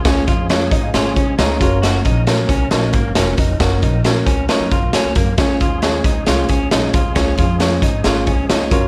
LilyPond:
<<
  \new Staff \with { instrumentName = "Upright piano" } { \time 4/4 \key des \major \tempo 4 = 135 << { r4. ees''16 f''16 aes''16 aes''8. bes''4 | r1 | r1 | r1 |
r1 | } \\ { <des' f' aes' des''>8 r8 <des' f' aes' des''>8 r8 <des' f' aes' des''>8 r8 <des' f' aes' des''>8 <des' ges' aes' bes' des''>8~ | <des' ges' aes' bes' des''>8 r8 <des' ges' bes' des''>8 r8 <des' ges' bes' des''>8 r8 <des' ges' bes' des''>8 r8 | <des' ges' bes' des''>8 r8 <des' ges' bes' des''>8 r8 <des' ges' bes' des''>8 r8 <des' ges' bes' des''>8 r8 | <des' f' aes' des''>8 r8 <des' f' aes' des''>8 r8 <des' f' aes' des''>8 r8 <des' f' aes' des''>8 r8 |
<des' f' aes' des''>8 r8 <des' f' aes' des''>8 r8 <des' f' aes' des''>8 r8 <des' f' aes' des''>8 <des' ges' bes' des''>8 | } >> }
  \new Staff \with { instrumentName = "Clean electric guitar" } { \time 4/4 \key des \major des'8 f'8 r8 ees'8 f'8 des'8 ees'8 f'8 | ges'8 ees'8 r8 des'8 ees'8 bes8 des'8 ees'8 | ges'8 ees'8 r8 des'8 ees'8 f'8 des'8 bes8 | des'8 f'8 r8 ees'8 f'8 des'8 ees'8 f'8 |
des'8 f'8 r8 ees'8 f'8 des'8 ees'8 f'8 | }
  \new Staff \with { instrumentName = "Tonewheel organ" } { \time 4/4 \key des \major des'1~ | des'2.~ des'8 c'8~ | c'1 | des'1~ |
des'1 | }
  \new Staff \with { instrumentName = "Tonewheel organ" } { \time 4/4 \key des \major <f aes aes'>2.~ <f aes aes'>8 <ges bes bes'>8~ | <ges bes bes'>1~ | <ges bes bes'>1 | <f aes aes'>1~ |
<f aes aes'>2.~ <f aes aes'>8 <ges bes bes'>8 | }
  \new Staff \with { instrumentName = "Upright bass" } { \clef bass \time 4/4 \key des \major des,8 f,4 aes,,8 aes,,8 c,8 des,8 ges,,8~ | ges,,8 bes,,4 c,8 bes,,8 aes,,8 fes,,8 f,,8 | ges,,8 bes,,4 des,8 r16 ges,16 ges,,16 bes,,16 r16 des,16 ges,8 | des,8 ees,4 des,8 c,8 des,8 ces,8 c,8 |
des,8 f,4 aes,,8 aes,,8 c,8 des,8 ges,,8 | }
  \new DrumStaff \with { instrumentName = "Drums" } \drummode { \time 4/4 <hh bd sn>8 <hh bd>8 <hh sn>8 <hh bd>8 <hh sn>8 <hh bd>8 <hh sn>8 <hh bd>8 | <hh sn>8 <hh bd>8 <hh sn>8 <hh bd>8 <hh sn>8 <hh bd>8 <hh sn>8 <hh bd>8 | <hh bd sn>8 <hh bd>8 <hh sn>8 <hh bd>8 <hh sn>8 <hh bd>8 <hh sn>8 <hh bd>8 | <hh bd sn>8 <hh bd>8 <hh sn>8 <hh bd>8 <hh sn>8 <hh bd>8 <hh sn>8 <hh bd>8 |
<hh bd sn>8 <hh bd>8 <hh sn>8 <hh bd>8 <hh sn>8 <hh bd>8 <hh sn>8 <hh bd>8 | }
>>